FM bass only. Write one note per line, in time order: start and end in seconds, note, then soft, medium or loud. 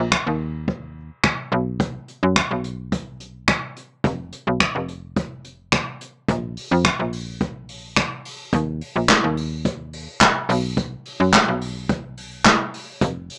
0.00 0.17 A#1 medium
0.27 1.11 D#2 medium
1.52 1.99 B1 loud
2.23 2.42 F#2 medium
2.51 3.54 B1 medium
4.04 4.33 F1 loud
4.47 4.66 B1 medium
4.75 5.78 F1 medium
6.28 6.57 A#1 loud
6.71 6.90 F2 medium
6.99 8.02 A#1 medium
8.53 8.82 D#2 loud
8.96 9.14 A#1 medium
9.24 10.08 D#2 medium
10.49 10.97 B1 loud
11.20 11.39 F#2 medium
11.48 12.51 B1 medium
13.01 13.30 F1 loud